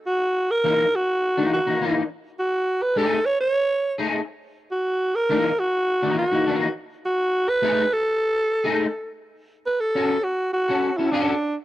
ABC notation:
X:1
M:4/4
L:1/16
Q:1/4=103
K:B
V:1 name="Alto saxophone"
F3 A3 F4 F4 z2 | F3 B =A2 c c4 z4 z | F3 A3 F4 F4 z2 | F3 B3 =A8 z2 |
z2 B =A3 F2 F3 E =D3 z |]
V:2 name="Clean electric guitar"
z4 [E,A,D] z4 [E,A,D] z [E,A,D] [E,A,D] z3 | z4 [=A,DG] z6 [A,DG] z4 | z4 [E,A,D] z4 [E,A,D] z [E,A,D] [E,A,D] z3 | z4 [=A,DG] z6 [A,DG] z4 |
z4 [CF=A] z4 [CFA] z [CFA] [CFA] z3 |]